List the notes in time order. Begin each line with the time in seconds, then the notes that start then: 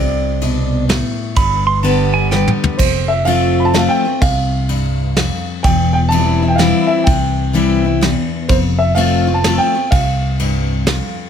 Already playing: C2 C3 D5
0.41 B2, ride
0.89 A2, snare, ride
1.36 G1 G2 B5, kick, ride
1.67 C6
1.83 D3 G3 B3 G4 A5, ride
2.14 G#5
2.31 D3 G3 B3 G4 G5, snare
2.48 mid tom
2.64 floor tom
2.78 F1 F2 C5, kick, crash
3.08 E5
3.25 F3 A3 C4 F4 F5, ride
3.60 B5
3.65 A5
3.74 F3 A3 C4 F4, snare, ride
3.78 F5
3.89 G5
4.05 C4 F4
4.21 C2 C3 F5, kick, ride
4.69 G2, ride
5.17 F2, snare, ride
5.63 E1 E2 G5, kick, ride
5.93 G5
6.09 E3 G3 C4 A5, ride
6.13 E4
6.42 C4 E4
6.48 G5
6.56 E3 G3 F5, snare, ride
6.60 C4 E4
6.87 E5
7.04 C2 C3 G5, kick, ride
7.53 E3 G3 C4 E4, ride
7.84 C4 E4
8.01 E2, snare, ride
8.48 F1 F2 C5, kick, ride
8.78 E5
8.95 F3 A3 C4 F4 F5, ride
9.27 C4 F4
9.34 A5
9.44 F3 A3 C4 F4, snare, ride
9.58 G5
9.75 C4 F4
9.91 C2 C3 F5, kick, ride
10.40 G2, ride
10.87 F2, snare, ride